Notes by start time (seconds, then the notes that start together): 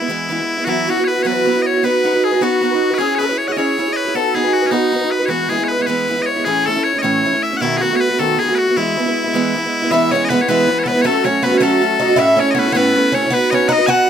Already playing: E4
0.01 G#3 B3
0.08 E3 G#3 B3 E4
0.29 E3 G#3 B3 E4
0.38 G#3 B3 E4
0.58 G#3 B3 E4
0.65 E3 F#3 B3 E4 F#4
0.69 E4
0.87 F#3 B3 E4 F#4
0.97 B3 E4 F#4
1.04 B4 C#5
1.08 B4
1.15 B3 E4 F#4
1.23 E3 F#3 B3 E4 F#4 B4 C#5
1.28 C#5
1.32 B4
1.45 F#3 B3 E4 F#4
1.54 B3 E4 F#4
1.62 D#5
1.66 C#5
1.73 B3 E4 F#4
1.83 B3 D#4 F#4 B4
2.04 B3 D#4 F#4 B4
2.13 D#4 F#4 B4
2.24 G#4
2.31 D#4 F#4 B4
2.41 B3 D#4 F#4 B4
2.61 B3 D#4 F#4 B4
2.71 D#4 F#4 B4
2.90 D#4 F#4 B4
2.94 B4
2.98 C#4 E4 G#4 C#5
3.15 B4 C#5
3.19 C#4 E4 G#4 B4 C#5
3.29 E4 G#4 C#5
3.38 C#5
3.48 E4 G#4 C#5 F#5
3.52 D#5
3.56 C#4 E4 G#4 C#5 D#5
3.61 C#5
3.78 C#4 E4 G#4 C#5
3.86 E4 G#4 C#5
3.93 B4 D#5
4.05 E4 G#4 C#5
4.14 B3 D#4 F#4 A4 B4
4.34 B3 D#4 F#4 G#4 B4
4.44 D#4 F#4 B4
4.53 F#4
4.62 D#4 F#4 B4
4.67 C#4
4.71 B3 D#4 F#4 B4
4.92 B3 D#4 F#4 B4
5.01 D#4 F#4 B4
5.11 B4
5.20 D#4 F#4 B4
5.26 E3 G#3 F#4 C#5
5.30 B3 E4 F#4
5.49 E3 G#3 B3 E4 G#4
5.58 G#3 B3 E4
5.64 C#5
5.68 B4
5.78 G#3 B3 E4
5.82 C#5
5.86 E3 G#3 B3 E4 B4
6.08 E3 G#3 B3 E4
6.17 G#3 B3 E4
6.22 C#5 D#5
6.28 C#5
6.36 G#3 B3 E4
6.45 A2 E3 A3 C#4 E4 G#4
6.66 E3 A3 C#4 E4 A4
6.75 A3 C#4 E4
6.84 C#5
6.94 A3 C#4 E4
6.98 C#5 D#5
7.03 A2 E3 A3 C#4 E4 C#5
7.23 E3 A3 C#4 E4
7.33 A3 C#4 E4
7.43 E5
7.51 A3 C#4 E4
7.57 B2 F#5
7.61 D#3 A3 B3 E4 F#4
7.66 E4
7.77 D#3 F#4 G#4
7.81 A3 B3 F#4
7.90 A3 B3 F#4
7.96 C#5
8.00 B4
8.09 A3 B3 F#4
8.18 B2 D#3 A3 B3 F#4 A4
8.39 D#3 A3 B3 F#4 G#4
8.48 A3 B3 F#4
8.55 F#4 B4
8.67 A3 B3 F#4
8.77 E3 G#3 B3 E4
8.97 E3 G#3 B3 E4
9.06 G#3 B3 E4
9.24 G#3 B3 E4
9.34 E3 G#3 B3 E4
9.54 E3 G#3 B3 E4
9.64 G#3 B3 E4
9.82 G#3 B3 E4
9.91 E3 G#3 B3 E4 E5
10.11 E3 G#3 B3 C#4 E4 C#5
10.25 D#5
10.29 E3 G#3 B3 B4
10.33 E4
10.39 G#3 B3 E4 C#5
10.48 E3 G#3 B3 E4 B4
10.68 E3 G#3 B3
10.79 C#5
10.83 E3 G#3 B3 A4 B4 C#5
10.88 B3 E4 B4
10.95 G#3 B3 E4
11.02 F#3 A3 C#4 A4 C#5
11.06 A3 F#4 A4
11.24 F#3 A3 C#4 F#4 C#5
11.42 F#3 A3 B3 C#4 F#4 B4
11.51 A3 C#4 F#4
11.58 F#3 A3 C#4 C#5
11.62 A3 F#4 A4
11.81 F#3 A3 C#4 F#4
11.99 F#3 A3 C#4 D#4 F#4 D#5
12.08 A3 C#4 F#4
12.16 A2 A3 C#4 E4 A4 E5
12.21 E5 F#5
12.37 A3 C#4 E4 A4 C#5
12.51 C#5 D#5
12.55 A3 B3 C#4 E4
12.59 A4 B4
12.66 C#4 E4 A4
12.72 A2 A3 B3 C#4 E4 B4 C#5
12.76 A4 B4
12.95 A3 C#4 E4 A4
13.12 A3 C#4 E4 C#5
13.17 A4
13.22 C#4 E4 A4
13.27 B3 C#4
13.31 B3 D#4 F#4 B4
13.50 B3 C#4 D#4 F#4 C#5 D#5
13.55 B4
13.68 B3 D#4 F#4 B4 D#5 F#5
13.72 D#5
13.78 D#4 F#4 B4
13.87 B3 D#4 F#4 B4 F#5 G#5
13.93 F#5